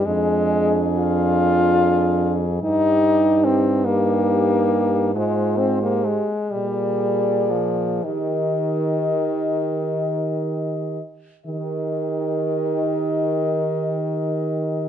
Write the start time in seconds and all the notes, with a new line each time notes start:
0.05 F2 G#3 D4 G#4
0.98 F4
2.62 G2 D#4 G4
3.44 C4
3.85 A#3 D#4 G4
5.15 G#2 G#3 F4 C5
5.59 C4
5.82 A#3 G4
6.05 G#3
6.51 A#2 G3 G#4 D5
7.51 F3
8.04 D#3 G4 D#5
11.46 D#3 G4 D#5